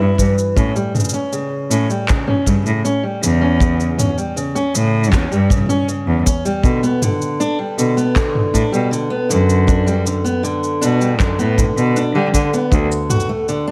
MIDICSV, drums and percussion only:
0, 0, Header, 1, 2, 480
1, 0, Start_track
1, 0, Tempo, 759494
1, 358, Time_signature, 4, 2, 24, 8
1, 8666, End_track
2, 0, Start_track
2, 0, Title_t, "Drums"
2, 116, Note_on_c, 9, 36, 59
2, 121, Note_on_c, 9, 69, 78
2, 179, Note_off_c, 9, 36, 0
2, 184, Note_off_c, 9, 69, 0
2, 242, Note_on_c, 9, 69, 32
2, 305, Note_off_c, 9, 69, 0
2, 358, Note_on_c, 9, 36, 108
2, 361, Note_on_c, 9, 69, 40
2, 421, Note_off_c, 9, 36, 0
2, 424, Note_off_c, 9, 69, 0
2, 480, Note_on_c, 9, 69, 32
2, 544, Note_off_c, 9, 69, 0
2, 598, Note_on_c, 9, 45, 54
2, 602, Note_on_c, 9, 69, 33
2, 631, Note_off_c, 9, 69, 0
2, 631, Note_on_c, 9, 69, 45
2, 660, Note_off_c, 9, 69, 0
2, 660, Note_on_c, 9, 69, 54
2, 661, Note_off_c, 9, 45, 0
2, 690, Note_off_c, 9, 69, 0
2, 690, Note_on_c, 9, 69, 66
2, 719, Note_off_c, 9, 69, 0
2, 719, Note_on_c, 9, 69, 31
2, 782, Note_off_c, 9, 69, 0
2, 839, Note_on_c, 9, 69, 42
2, 902, Note_off_c, 9, 69, 0
2, 1081, Note_on_c, 9, 69, 79
2, 1144, Note_off_c, 9, 69, 0
2, 1202, Note_on_c, 9, 69, 30
2, 1265, Note_off_c, 9, 69, 0
2, 1316, Note_on_c, 9, 39, 71
2, 1320, Note_on_c, 9, 69, 40
2, 1326, Note_on_c, 9, 36, 118
2, 1379, Note_off_c, 9, 39, 0
2, 1384, Note_off_c, 9, 69, 0
2, 1389, Note_off_c, 9, 36, 0
2, 1437, Note_on_c, 9, 45, 50
2, 1500, Note_off_c, 9, 45, 0
2, 1557, Note_on_c, 9, 36, 58
2, 1561, Note_on_c, 9, 69, 70
2, 1620, Note_off_c, 9, 36, 0
2, 1624, Note_off_c, 9, 69, 0
2, 1683, Note_on_c, 9, 69, 32
2, 1746, Note_off_c, 9, 69, 0
2, 1802, Note_on_c, 9, 69, 42
2, 1865, Note_off_c, 9, 69, 0
2, 2043, Note_on_c, 9, 69, 79
2, 2106, Note_off_c, 9, 69, 0
2, 2278, Note_on_c, 9, 36, 110
2, 2284, Note_on_c, 9, 69, 40
2, 2341, Note_off_c, 9, 36, 0
2, 2347, Note_off_c, 9, 69, 0
2, 2403, Note_on_c, 9, 69, 29
2, 2466, Note_off_c, 9, 69, 0
2, 2519, Note_on_c, 9, 45, 52
2, 2523, Note_on_c, 9, 69, 72
2, 2582, Note_off_c, 9, 45, 0
2, 2586, Note_off_c, 9, 69, 0
2, 2642, Note_on_c, 9, 69, 30
2, 2705, Note_off_c, 9, 69, 0
2, 2763, Note_on_c, 9, 69, 36
2, 2826, Note_off_c, 9, 69, 0
2, 2882, Note_on_c, 9, 69, 30
2, 2945, Note_off_c, 9, 69, 0
2, 3002, Note_on_c, 9, 69, 70
2, 3065, Note_off_c, 9, 69, 0
2, 3184, Note_on_c, 9, 69, 32
2, 3239, Note_on_c, 9, 36, 104
2, 3240, Note_on_c, 9, 39, 66
2, 3244, Note_off_c, 9, 69, 0
2, 3244, Note_on_c, 9, 69, 42
2, 3302, Note_off_c, 9, 36, 0
2, 3303, Note_off_c, 9, 39, 0
2, 3307, Note_off_c, 9, 69, 0
2, 3363, Note_on_c, 9, 69, 27
2, 3426, Note_off_c, 9, 69, 0
2, 3477, Note_on_c, 9, 36, 104
2, 3480, Note_on_c, 9, 45, 24
2, 3484, Note_on_c, 9, 69, 71
2, 3499, Note_off_c, 9, 45, 0
2, 3499, Note_on_c, 9, 45, 27
2, 3520, Note_off_c, 9, 45, 0
2, 3520, Note_on_c, 9, 45, 34
2, 3539, Note_off_c, 9, 45, 0
2, 3539, Note_on_c, 9, 45, 36
2, 3540, Note_off_c, 9, 36, 0
2, 3547, Note_off_c, 9, 69, 0
2, 3558, Note_off_c, 9, 45, 0
2, 3558, Note_on_c, 9, 45, 41
2, 3577, Note_off_c, 9, 45, 0
2, 3577, Note_on_c, 9, 45, 47
2, 3601, Note_on_c, 9, 69, 30
2, 3640, Note_off_c, 9, 45, 0
2, 3664, Note_off_c, 9, 69, 0
2, 3721, Note_on_c, 9, 69, 38
2, 3784, Note_off_c, 9, 69, 0
2, 3958, Note_on_c, 9, 36, 66
2, 3961, Note_on_c, 9, 69, 80
2, 4022, Note_off_c, 9, 36, 0
2, 4024, Note_off_c, 9, 69, 0
2, 4080, Note_on_c, 9, 69, 33
2, 4143, Note_off_c, 9, 69, 0
2, 4193, Note_on_c, 9, 36, 119
2, 4201, Note_on_c, 9, 69, 40
2, 4257, Note_off_c, 9, 36, 0
2, 4264, Note_off_c, 9, 69, 0
2, 4320, Note_on_c, 9, 69, 32
2, 4383, Note_off_c, 9, 69, 0
2, 4436, Note_on_c, 9, 45, 60
2, 4440, Note_on_c, 9, 69, 70
2, 4499, Note_off_c, 9, 45, 0
2, 4503, Note_off_c, 9, 69, 0
2, 4561, Note_on_c, 9, 69, 30
2, 4624, Note_off_c, 9, 69, 0
2, 4681, Note_on_c, 9, 69, 36
2, 4744, Note_off_c, 9, 69, 0
2, 4921, Note_on_c, 9, 69, 68
2, 4984, Note_off_c, 9, 69, 0
2, 5042, Note_on_c, 9, 69, 29
2, 5105, Note_off_c, 9, 69, 0
2, 5156, Note_on_c, 9, 36, 111
2, 5157, Note_on_c, 9, 39, 67
2, 5161, Note_on_c, 9, 69, 39
2, 5219, Note_off_c, 9, 36, 0
2, 5220, Note_off_c, 9, 39, 0
2, 5224, Note_off_c, 9, 69, 0
2, 5277, Note_on_c, 9, 45, 56
2, 5341, Note_off_c, 9, 45, 0
2, 5397, Note_on_c, 9, 36, 51
2, 5402, Note_on_c, 9, 69, 71
2, 5460, Note_off_c, 9, 36, 0
2, 5465, Note_off_c, 9, 69, 0
2, 5522, Note_on_c, 9, 69, 31
2, 5586, Note_off_c, 9, 69, 0
2, 5644, Note_on_c, 9, 69, 38
2, 5707, Note_off_c, 9, 69, 0
2, 5882, Note_on_c, 9, 69, 69
2, 5945, Note_off_c, 9, 69, 0
2, 6001, Note_on_c, 9, 69, 32
2, 6064, Note_off_c, 9, 69, 0
2, 6119, Note_on_c, 9, 36, 110
2, 6121, Note_on_c, 9, 69, 37
2, 6182, Note_off_c, 9, 36, 0
2, 6184, Note_off_c, 9, 69, 0
2, 6241, Note_on_c, 9, 69, 29
2, 6304, Note_off_c, 9, 69, 0
2, 6362, Note_on_c, 9, 69, 72
2, 6425, Note_off_c, 9, 69, 0
2, 6482, Note_on_c, 9, 69, 31
2, 6545, Note_off_c, 9, 69, 0
2, 6602, Note_on_c, 9, 69, 36
2, 6665, Note_off_c, 9, 69, 0
2, 6721, Note_on_c, 9, 69, 27
2, 6785, Note_off_c, 9, 69, 0
2, 6841, Note_on_c, 9, 69, 68
2, 6904, Note_off_c, 9, 69, 0
2, 6960, Note_on_c, 9, 69, 31
2, 7024, Note_off_c, 9, 69, 0
2, 7077, Note_on_c, 9, 36, 99
2, 7077, Note_on_c, 9, 39, 65
2, 7081, Note_on_c, 9, 69, 38
2, 7140, Note_off_c, 9, 36, 0
2, 7140, Note_off_c, 9, 39, 0
2, 7144, Note_off_c, 9, 69, 0
2, 7201, Note_on_c, 9, 69, 27
2, 7264, Note_off_c, 9, 69, 0
2, 7317, Note_on_c, 9, 45, 58
2, 7318, Note_on_c, 9, 36, 88
2, 7322, Note_on_c, 9, 69, 68
2, 7381, Note_off_c, 9, 36, 0
2, 7381, Note_off_c, 9, 45, 0
2, 7385, Note_off_c, 9, 69, 0
2, 7442, Note_on_c, 9, 69, 31
2, 7505, Note_off_c, 9, 69, 0
2, 7561, Note_on_c, 9, 69, 36
2, 7625, Note_off_c, 9, 69, 0
2, 7797, Note_on_c, 9, 36, 63
2, 7801, Note_on_c, 9, 69, 65
2, 7861, Note_off_c, 9, 36, 0
2, 7864, Note_off_c, 9, 69, 0
2, 7923, Note_on_c, 9, 69, 29
2, 7986, Note_off_c, 9, 69, 0
2, 8037, Note_on_c, 9, 36, 102
2, 8041, Note_on_c, 9, 69, 37
2, 8100, Note_off_c, 9, 36, 0
2, 8105, Note_off_c, 9, 69, 0
2, 8163, Note_on_c, 9, 69, 30
2, 8226, Note_off_c, 9, 69, 0
2, 8277, Note_on_c, 9, 45, 66
2, 8281, Note_on_c, 9, 69, 74
2, 8340, Note_off_c, 9, 45, 0
2, 8343, Note_off_c, 9, 69, 0
2, 8343, Note_on_c, 9, 69, 31
2, 8406, Note_off_c, 9, 69, 0
2, 8522, Note_on_c, 9, 69, 38
2, 8586, Note_off_c, 9, 69, 0
2, 8666, End_track
0, 0, End_of_file